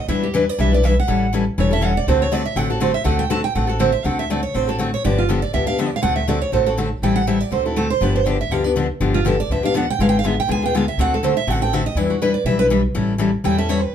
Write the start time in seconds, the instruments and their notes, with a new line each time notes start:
0.08 upright bass E2, steel-string acoustic guitar E3 G3 D4 E4 B4 E5
0.23 steel-string acoustic guitar G4
0.34 steel-string acoustic guitar E3 G3 D4 E4 B4
0.49 steel-string acoustic guitar D5
0.58 upright bass B1, steel-string acoustic guitar E3 G3 D4 E4 B4 E5
0.72 steel-string acoustic guitar D4 E4 B4 D5
0.83 steel-string acoustic guitar E3 G3 D4 E4 B4 E5
1.00 steel-string acoustic guitar F#5
1.07 upright bass A1, steel-string acoustic guitar E3 G3 C#4 E4 A4
1.33 steel-string acoustic guitar E3 G3 C#4 E4 A4
1.58 upright bass E1, steel-string acoustic guitar E3 G3 C#4 E4 A4 C#5
1.71 steel-string acoustic guitar C#4 E4 A4 E5
1.81 steel-string acoustic guitar E3 G3 C#4 E4 A4 F#5
1.97 steel-string acoustic guitar D5
2.07 upright bass D2, steel-string acoustic guitar D3 A3 C4 F#4 A4 C5
2.22 steel-string acoustic guitar C#5
2.32 steel-string acoustic guitar D3 A3 C4 F#4 A4 D5
2.46 steel-string acoustic guitar E5
2.56 upright bass A1, steel-string acoustic guitar D3 A3 C4 F#4 A4 F#5
2.70 steel-string acoustic guitar C4 F#4 A4
2.80 steel-string acoustic guitar D3 A3 C4 F#4 A4 C5
2.94 steel-string acoustic guitar E5
3.04 upright bass D2, steel-string acoustic guitar D3 A3 C4 F#4 A4 F#5
3.19 steel-string acoustic guitar G5
3.30 steel-string acoustic guitar D3 A3 C4 F#4 A4 A5
3.44 steel-string acoustic guitar G5
3.55 upright bass A1, steel-string acoustic guitar D3 A3 C4 F#4 A4 F#5
3.67 steel-string acoustic guitar C4 F#4 A4
3.79 steel-string acoustic guitar D3 A3 C4 F#4 A4 C5
3.92 steel-string acoustic guitar E5
4.04 upright bass D2, steel-string acoustic guitar D3 A3 C4 F#4 A4 F#5
4.19 steel-string acoustic guitar E5
4.30 steel-string acoustic guitar D3 A3 C4 F#4 A4 D5
4.43 steel-string acoustic guitar C#5
4.54 upright bass A1, steel-string acoustic guitar D3 A3 C4 F#4 A4 C5
4.68 steel-string acoustic guitar C4 F#4 A4
4.79 steel-string acoustic guitar D3 A3 C4 F#4 A4
4.94 steel-string acoustic guitar C#5
5.04 upright bass G1, steel-string acoustic guitar D3 F3 B3 D4 G4 D5
5.18 steel-string acoustic guitar F4
5.29 steel-string acoustic guitar D3 F3 B3 D4 G4 A4
5.42 steel-string acoustic guitar D5
5.53 upright bass D2, steel-string acoustic guitar D3 F3 B3 D4 G4 E5
5.66 steel-string acoustic guitar B3 D4 G4 F5
5.79 steel-string acoustic guitar D3 F3 B3 D4 G4 E5
5.88 steel-string acoustic guitar D5
5.96 steel-string acoustic guitar F5
6.02 upright bass D2, steel-string acoustic guitar D3 A3 C4 F#4 A4 F#5
6.16 steel-string acoustic guitar E5
6.28 steel-string acoustic guitar D3 A3 C4 F#4 A4 D5
6.42 steel-string acoustic guitar C#5
6.52 upright bass A1, steel-string acoustic guitar D3 A3 C4 F#4 A4 C5
6.66 steel-string acoustic guitar C4 F#4 A4
6.77 steel-string acoustic guitar D3 A3 C4 F#4 A4
7.02 upright bass A1, steel-string acoustic guitar E3 G3 C4 E4 A4 G5
7.16 steel-string acoustic guitar F#5
7.27 steel-string acoustic guitar E3 G3 C4 E4 A4 E5
7.40 steel-string acoustic guitar D5
7.51 upright bass D2, steel-string acoustic guitar D3 A3 C4 F#4 A4 C5
7.65 steel-string acoustic guitar C4 E4 F#4 A4
7.76 steel-string acoustic guitar D3 A3 C4 F#4 A4
7.90 steel-string acoustic guitar C5
8.01 upright bass G1, steel-string acoustic guitar D3 F3 B3 D4 G4 B4
8.16 steel-string acoustic guitar C5
8.26 steel-string acoustic guitar D3 F3 B3 D4 G4 D5
8.41 steel-string acoustic guitar E5
8.50 upright bass D2, steel-string acoustic guitar D3 F3 B3 D4 G4 F5
8.64 steel-string acoustic guitar B3 D4 G4 D5
8.76 steel-string acoustic guitar D3 F3 B3 D4 G4
9.00 upright bass G1, steel-string acoustic guitar D3 F3 B3 D4 G4
9.14 steel-string acoustic guitar F4
9.25 steel-string acoustic guitar D3 F3 B3 D4 G4 A4
9.40 steel-string acoustic guitar D5
9.49 upright bass D2, steel-string acoustic guitar D3 F3 B3 D4 G4 E5
9.63 steel-string acoustic guitar B3 D4 G4 F5
9.74 steel-string acoustic guitar D3 F3 B3 D4 G4 F#5
9.90 steel-string acoustic guitar G5
9.99 upright bass G#1, steel-string acoustic guitar D3 G#3 B3 F4 G#4 F5
10.09 steel-string acoustic guitar G5
10.19 steel-string acoustic guitar F5
10.24 steel-string acoustic guitar D3 G#3 B3 F4 G#4 E5
10.40 steel-string acoustic guitar G5
10.48 upright bass D2, steel-string acoustic guitar D3 G#3 B3 F4 G#4 G#5
10.62 steel-string acoustic guitar B3 F4 G#4 G5
10.74 steel-string acoustic guitar D3 G#3 B3 F4 G#4 F5
10.88 steel-string acoustic guitar E5
10.98 upright bass D2, steel-string acoustic guitar D3 A3 C4 F#4 A4 F#5
11.14 steel-string acoustic guitar A4
11.23 steel-string acoustic guitar D3 A3 C4 F#4 A4 C5
11.37 steel-string acoustic guitar E5
11.47 upright bass A1, steel-string acoustic guitar D3 A3 C4 F#4 A4 F#5
11.61 steel-string acoustic guitar C4 F#4 A4 G5
11.73 steel-string acoustic guitar D3 A3 C4 F#4 A4 E5
11.86 steel-string acoustic guitar D#5
11.95 upright bass E2, steel-string acoustic guitar E3 G3 D4 E4 B4 D5
12.10 steel-string acoustic guitar F#4
12.22 steel-string acoustic guitar E3 G3 D4 E4 B4
12.34 steel-string acoustic guitar D5
12.44 upright bass B1, steel-string acoustic guitar E3 G3 D4 E4 B4 E5
12.59 steel-string acoustic guitar D4 E4 B4
12.70 steel-string acoustic guitar E3 G3 D4 E4 B4
12.95 upright bass A1, steel-string acoustic guitar E3 G3 C#4 E4 A4
13.18 steel-string acoustic guitar E3 G3 C#4 E4 A4
13.44 upright bass E2, steel-string acoustic guitar E3 G3 C#4 E4 A4 G5
13.58 steel-string acoustic guitar C#4 E4 A4 E5
13.69 steel-string acoustic guitar E3 G3 C#4 E4 A4 C#5
13.83 steel-string acoustic guitar B4